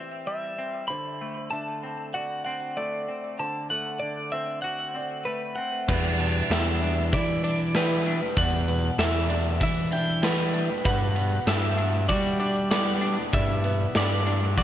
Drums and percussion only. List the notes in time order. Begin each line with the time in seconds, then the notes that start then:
5.88 kick, crash
6.20 closed hi-hat
6.51 snare, closed hi-hat
6.82 closed hi-hat
7.13 kick, closed hi-hat
7.44 closed hi-hat
7.75 snare, closed hi-hat
8.06 closed hi-hat
8.37 kick, closed hi-hat
8.68 closed hi-hat
8.99 snare, closed hi-hat
9.30 closed hi-hat
9.61 kick, closed hi-hat
9.92 closed hi-hat
10.23 snare, closed hi-hat
10.54 closed hi-hat
10.85 kick, closed hi-hat
11.16 closed hi-hat
11.47 snare, closed hi-hat
11.78 closed hi-hat
12.09 kick, closed hi-hat
12.41 closed hi-hat
12.71 snare, closed hi-hat
13.02 closed hi-hat
13.33 kick, closed hi-hat
13.64 closed hi-hat
13.95 snare, closed hi-hat
14.27 closed hi-hat
14.58 kick, closed hi-hat